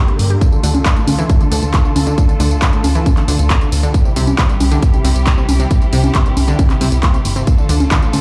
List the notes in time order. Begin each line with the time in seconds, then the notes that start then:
Already playing: D3 A#3 G4 A#4
0.08 G4, closed hi-hat
0.19 G2, open hi-hat
0.30 G4, closed hi-hat
0.41 A3 F4 A4, kick, closed hi-hat, tambourine
0.52 D3, tambourine
0.63 D2 D3, open hi-hat, tambourine
0.75 closed hi-hat, tambourine, high conga
0.85 D3, kick, clap, closed hi-hat, tambourine
0.96 A2, closed hi-hat, tambourine
1.07 D2, open hi-hat, tambourine, high conga
1.19 E3, closed hi-hat, tambourine
1.29 kick, closed hi-hat, tambourine
1.41 D3, closed hi-hat, tambourine
1.52 D2 D3, open hi-hat, tambourine
1.63 D2, closed hi-hat, tambourine
1.74 C3, kick, clap, closed hi-hat, tambourine
1.85 D3, tambourine
1.96 D2, open hi-hat, tambourine, high conga
2.07 D3, closed hi-hat, tambourine
2.18 kick, closed hi-hat, tambourine
2.29 D3, closed hi-hat, tambourine
2.40 D2 D3, open hi-hat, tambourine
2.51 closed hi-hat, tambourine
2.62 D3, kick, clap, closed hi-hat, tambourine
2.73 A2, closed hi-hat, tambourine
2.84 D2, open hi-hat, tambourine, high conga
2.95 E3, closed hi-hat, tambourine
3.06 kick, closed hi-hat, tambourine, high conga
3.17 D3, clap, closed hi-hat, tambourine
3.28 D2 D3, open hi-hat, tambourine
3.39 D2, closed hi-hat, tambourine
3.50 C3, kick, clap, closed hi-hat, tambourine
3.61 D3, closed hi-hat, tambourine
3.72 D2, open hi-hat, tambourine
3.83 D3, closed hi-hat, tambourine
3.94 C3 G3 E4 G4, kick, closed hi-hat, tambourine
4.05 C3, tambourine
4.16 C2 C3, open hi-hat, tambourine
4.27 closed hi-hat, tambourine, high conga
4.38 C3, kick, clap, closed hi-hat, tambourine
4.49 G2, closed hi-hat, tambourine
4.60 C2, open hi-hat, tambourine, high conga
4.71 D3, closed hi-hat, tambourine
4.82 kick, closed hi-hat, tambourine
4.94 C3, closed hi-hat, tambourine
5.04 C2 C3, open hi-hat, tambourine
5.15 C2, closed hi-hat, tambourine
5.27 A#2, kick, clap, closed hi-hat, tambourine
5.38 C3, tambourine
5.49 C2, open hi-hat, tambourine, high conga
5.60 C3, closed hi-hat, tambourine
5.71 kick, closed hi-hat, tambourine
5.82 C3, closed hi-hat, tambourine
5.93 C2 C3, open hi-hat, tambourine
6.04 closed hi-hat, tambourine, high conga
6.15 C3, kick, clap, closed hi-hat, tambourine
6.26 G2, closed hi-hat, tambourine
6.37 C2, open hi-hat, tambourine, high conga
6.48 D3, closed hi-hat, tambourine
6.59 kick, closed hi-hat, tambourine, high conga
6.70 C3, clap, closed hi-hat, tambourine
6.81 C2 C3, open hi-hat, tambourine
6.92 C2, closed hi-hat, tambourine
7.03 A#2, kick, clap, closed hi-hat, tambourine
7.14 C3, closed hi-hat, tambourine
7.25 G1, open hi-hat, tambourine
7.36 C3, closed hi-hat, tambourine
7.47 D3 A3 F4 A4, kick, closed hi-hat, tambourine
7.58 D3, tambourine
7.69 D2 D3, open hi-hat, tambourine
7.80 closed hi-hat, tambourine, high conga
7.91 D3, kick, clap, closed hi-hat, tambourine
8.02 A2, closed hi-hat, tambourine
8.13 D2, open hi-hat, tambourine, high conga